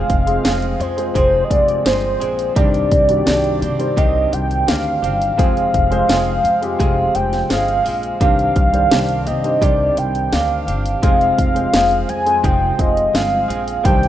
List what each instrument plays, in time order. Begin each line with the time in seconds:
Already playing: clean electric guitar F2 C3 F3 G#3 C4 G#4, grand piano C3 G#3 C4 F4 C5, soft synth lead F5
0.10 upright bass F1, kick, closed hi-hat
0.27 grand piano G#3 C4 F4 G#4, closed hi-hat
0.44 upright bass F1, clean electric guitar F3 G#3 C4 G#4, snare, closed hi-hat
0.62 closed hi-hat
0.79 upright bass F2, clean electric guitar F3 G#3 C4 G#4, soft synth lead C5, closed hi-hat
0.97 grand piano G#3 C4 F4 C5, closed hi-hat
1.15 upright bass F1, clean electric guitar F2 C3 F3 G#3 C4 G#4, soft synth lead C5, kick, closed hi-hat
1.44 soft synth lead D#5
1.50 upright bass F1, grand piano G#3 C4 F4 D5, soft synth lead D5, kick, closed hi-hat
1.68 closed hi-hat
1.85 upright bass G1, clean electric guitar F3 G#3 C4 G#4, soft synth lead C5, snare, closed hi-hat
2.20 upright bass A#1, clean electric guitar F3 G#3 C4 G#4, closed hi-hat
2.39 closed hi-hat
2.56 upright bass C2, grand piano G2 D#3 G3 D4 C5, clean electric guitar C3 D#3 C4 D4 G4, soft synth lead D5, kick, closed hi-hat
2.74 closed hi-hat
2.92 upright bass C2, kick, closed hi-hat
3.08 grand piano D#3 G3 D4 F#4, closed hi-hat
3.17 grand piano G4
3.26 upright bass C2, clean electric guitar D#3 C4 D4 G4, snare, closed hi-hat
3.44 closed hi-hat
3.61 upright bass C3, clean electric guitar C4 D4 G4, closed hi-hat
3.79 grand piano D#3 G3 C4 C5, closed hi-hat
3.97 upright bass C2, clean electric guitar C3 D#3 C4 D4 G4, soft synth lead D#5, kick, closed hi-hat
4.32 upright bass C2, soft synth lead G5, closed hi-hat
4.51 closed hi-hat
4.67 upright bass D2, clean electric guitar D#3 C4 D4 G4, soft synth lead F5, snare, closed hi-hat
5.02 upright bass G1, clean electric guitar C4 D4 G4, soft synth lead F5, closed hi-hat
5.22 closed hi-hat
5.38 upright bass F1, clean electric guitar F2 C3 F3 G#3 C4 G#4, grand piano C3 G#3 C4 F4 C5, kick, closed hi-hat
5.57 closed hi-hat
5.74 upright bass F1, kick, closed hi-hat
5.91 grand piano G#3 C4 F4 C5, closed hi-hat
6.08 upright bass F1, clean electric guitar F3 G#3 C4 G#4, snare, closed hi-hat
6.44 upright bass F2, closed hi-hat
6.62 grand piano G#3 C4 F4 G4, closed hi-hat
6.79 upright bass F1, clean electric guitar F2 C3 F3 G#3 C4 G#4, kick, closed hi-hat
7.14 upright bass F1, grand piano G#3 C4 F4 C5, soft synth lead G5, closed hi-hat
7.33 snare, closed hi-hat
7.49 upright bass G1, clean electric guitar F3 G#3 C4 G#4, soft synth lead F5, snare, closed hi-hat
7.68 closed hi-hat
7.84 upright bass A#1, clean electric guitar F3 G#3 C4 G#4, open hi-hat
8.03 closed hi-hat
8.20 upright bass C2, grand piano G2 D#3 G3 D4 C5, clean electric guitar C3 D#3 C4 D4 G4, soft synth lead F5, kick, closed hi-hat
8.39 closed hi-hat
8.56 upright bass C2, kick, closed hi-hat
8.73 grand piano D#3 G3 C5 D5, closed hi-hat
8.90 upright bass C2, clean electric guitar D#3 C4 D4 G4, snare, closed hi-hat
9.09 closed hi-hat
9.26 upright bass C3, clean electric guitar C4 D4 G4, soft synth lead D#5, closed hi-hat
9.43 grand piano D#3 G3 D4 C5, closed hi-hat
9.61 upright bass C2, clean electric guitar C3 D#3 C4 D4 G4, soft synth lead D5, kick, closed hi-hat
9.97 upright bass C2, soft synth lead G5, closed hi-hat
10.15 closed hi-hat
10.32 upright bass D2, clean electric guitar D#3 C4 D4 G4, soft synth lead F5, snare, closed hi-hat
10.67 upright bass G1, clean electric guitar C4 D4 G4, closed hi-hat
10.86 closed hi-hat
11.02 upright bass F1, clean electric guitar F2 C3 F3 G#3 C4 G#4, grand piano C3 G#3 C4 F4 C5, soft synth lead F5, kick, closed hi-hat
11.21 closed hi-hat
11.38 upright bass F1, kick, closed hi-hat
11.55 grand piano G#3 C4 F4 C5, closed hi-hat
11.73 upright bass F1, clean electric guitar F3 G#3 C4 G#4, snare, closed hi-hat
11.91 closed hi-hat
12.09 upright bass F2, soft synth lead G#5, closed hi-hat
12.25 grand piano G#3 C4 F4 C5, closed hi-hat
12.43 upright bass F1, clean electric guitar F2 C3 F3 G#3 C4 G#4, soft synth lead G5, kick, closed hi-hat
12.79 upright bass F1, grand piano G#3 C4 F4 C5, soft synth lead D#5, kick, closed hi-hat
12.97 closed hi-hat
13.13 upright bass G1, clean electric guitar F3 G#3 C4 G#4, soft synth lead F5, snare, closed hi-hat
13.48 upright bass A#1, clean electric guitar F3 G#3 C4 G#4, closed hi-hat
13.68 closed hi-hat
13.83 upright bass C2, grand piano G2 D#3 G3 D4 C5, clean electric guitar C3 D#3 C4 D4 G4, soft synth lead G5, kick, closed hi-hat
14.03 closed hi-hat